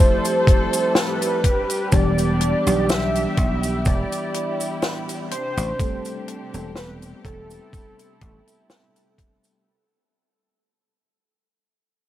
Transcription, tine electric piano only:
0.00 1.46 F3 medium
0.00 1.46 A3 medium
0.00 1.46 C4 medium
0.00 1.46 E4 medium
0.00 1.46 G4 medium
1.92 2.60 E3 medium
1.92 2.60 G3 medium
1.92 2.61 B3 medium
1.92 2.61 D4 medium
1.92 2.61 G4 loud
2.66 2.79 E3 medium
2.66 2.79 G3 medium
2.66 2.79 B3 medium
2.66 2.79 D4 medium
2.66 2.79 G4 medium
5.79 6.47 G3 medium
5.79 6.47 A3 medium
5.79 6.48 C4 medium
5.79 6.48 D4 medium
5.79 6.48 A4 medium
6.53 6.66 G3 medium
6.53 6.66 B3 medium
6.53 6.66 C4 medium
6.53 6.66 D4 medium
6.53 6.67 A4 medium

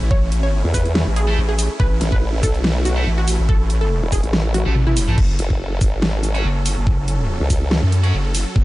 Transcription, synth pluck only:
0.11 0.31 C#5 medium
0.43 0.63 C#5 medium
0.74 1.02 B4 medium
1.16 1.37 G#4 medium
1.49 1.69 G#4 medium
1.80 2.00 B4 loud
2.12 2.32 B4 medium
2.43 2.71 A4 medium
2.85 3.06 F#4 medium
3.18 3.38 F#4 medium
3.49 3.69 A4 loud
3.81 4.01 A4 loud
4.12 4.39 G#4 medium
4.54 4.75 F#4 medium
4.87 5.07 E4 loud

